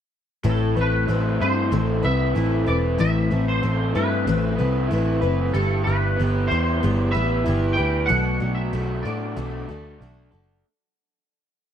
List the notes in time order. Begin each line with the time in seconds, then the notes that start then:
0.43 A1 A2 E3 A3 C4 E4 B4
0.49 A4
0.77 A1 A3 C4 E4 B4
0.81 B4
1.08 A1 A3 C4 E4 B4
1.41 G2 A3 C4 E4 C5
1.72 A1 A2 E3 A3 C4 E4
2.03 C2 A3 C4 E4 B4 E5
2.35 A1 A3 C4 E4 B4
2.67 E1 A3 C4 E4 B4 D5
2.98 A1 A2 E3 A3 C4 E4 B4 E5
3.31 A1 A3 C4 E4 B4
3.48 C5
3.63 A1 A3 C4 E4
3.95 G2 A3 C4 E4 B4
4.27 A1 A2 E3 A3 C4 E4 B4
4.59 C2 A3 C4 E4 B4
4.91 A1 A3 C4 E4 B4
5.22 F#1 A3 C4 E4 B4
5.53 G1 G3 B3 E4 G4 A4
5.84 G1 G3 G4 B4
5.88 B3 E4
6.16 G1 G3 B3
6.21 B3 E4 G4
6.47 E2 E4 C5
6.51 E4 G4
6.80 G3 B3
6.84 G1 E4 G4
7.11 A1 E4 G4 B4 E5
7.16 B3
7.46 G1 G3 B3 E4 G4
7.73 G5
7.77 D2 B3 E4 G4 B4
8.06 B2 F#3 A3 D4 F#5
8.10 B1 F#4
8.40 B1 F#3 A3 D4 F#4
8.55 E5
8.73 B1 F#3 A3 D4 F#4
9.03 A2 F#4 D5
9.07 A3 D4
9.37 B1 B2 F#3 A3 D4 F#4
9.67 D2 A3 D4 F#4 A4
10.01 B1 F#3 A3 D4 F#4
10.31 F#1 A3 D4 F#4 A4